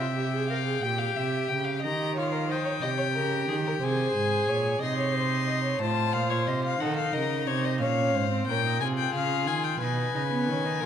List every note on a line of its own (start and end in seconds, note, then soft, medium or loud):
0.00 0.81 C3 medium
0.00 0.07 F4 medium
0.00 0.47 E5 medium
0.00 1.84 G5 medium
0.17 0.33 G4 medium
0.33 0.50 G#4 medium
0.49 0.57 A#4 medium
0.49 0.83 F5 medium
0.67 0.85 G#4 medium
0.81 1.16 A#2 medium
0.81 1.83 G4 medium
0.81 1.00 G5 medium
0.99 1.18 F5 medium
1.16 1.50 C3 medium
1.16 1.50 E5 medium
1.49 1.86 C#3 medium
1.49 1.66 G5 medium
1.64 1.82 F5 medium
1.82 2.82 D#3 medium
1.82 2.18 G4 medium
1.82 2.15 D#5 medium
1.82 2.16 A#5 medium
2.16 2.51 F4 medium
2.16 2.33 C#5 medium
2.16 2.53 F5 medium
2.32 2.48 A#4 medium
2.49 2.85 D#4 medium
2.49 2.64 C5 medium
2.49 3.84 G5 medium
2.65 2.72 C#5 medium
2.82 3.17 C3 medium
2.82 3.84 G4 medium
2.82 2.88 D#5 medium
2.98 3.05 C#5 medium
3.14 3.49 C#3 medium
3.14 3.48 A#4 medium
3.48 3.82 D#3 medium
3.48 3.55 G#4 medium
3.66 3.73 A#4 medium
3.81 4.15 C3 medium
3.81 4.84 G#4 medium
3.81 4.50 C5 medium
3.81 4.82 G#5 medium
4.15 4.48 G#2 medium
4.48 4.81 A#2 medium
4.48 4.82 C#5 medium
4.80 5.79 C3 medium
4.80 5.82 D#4 medium
4.80 4.97 D#5 medium
4.80 5.80 C6 medium
4.98 5.16 C#5 medium
5.14 5.46 C5 medium
5.47 5.63 D#5 medium
5.64 5.82 C#5 medium
5.81 6.16 A2 medium
5.81 6.79 F4 medium
5.81 6.83 C5 medium
5.81 6.15 A5 medium
6.13 6.49 A#2 medium
6.13 6.32 F5 medium
6.30 6.49 C#5 medium
6.47 6.80 C3 medium
6.47 6.64 D#5 medium
6.65 6.82 F5 medium
6.81 7.13 D#3 medium
6.81 7.83 D#4 medium
6.81 7.14 A4 medium
6.81 6.96 F#5 medium
6.96 7.15 F5 medium
7.13 7.49 C#3 medium
7.13 7.47 A#4 medium
7.13 7.48 D#5 medium
7.47 7.82 C3 medium
7.47 7.80 C5 medium
7.47 7.66 C#5 medium
7.65 7.80 D#5 medium
7.80 8.16 A#2 medium
7.80 8.30 C#4 medium
7.80 8.17 C#5 medium
7.80 8.46 F5 medium
8.14 8.47 G#2 medium
8.14 8.51 C5 medium
8.31 8.50 C4 medium
8.47 8.81 A#2 medium
8.47 8.65 C#4 medium
8.47 8.83 A#4 medium
8.47 8.80 G5 medium
8.65 8.84 D#4 medium
8.80 9.13 C3 medium
8.80 9.84 F4 medium
8.80 9.79 G#4 medium
8.80 8.87 G#5 medium
8.98 9.14 G5 medium
9.14 9.48 C#3 medium
9.14 9.49 F5 medium
9.46 9.79 D#3 medium
9.46 9.66 G#5 medium
9.64 9.80 G5 medium
9.80 10.13 B2 medium
9.80 10.14 D#4 medium
9.80 10.82 B4 medium
9.80 10.86 G#5 medium
10.13 10.49 C#3 medium
10.13 10.21 D#4 medium
10.31 10.50 B3 medium
10.47 10.83 D#3 medium
10.47 10.67 C#4 medium
10.66 10.82 D#4 medium
10.80 10.86 C#3 medium
10.80 10.86 A#4 medium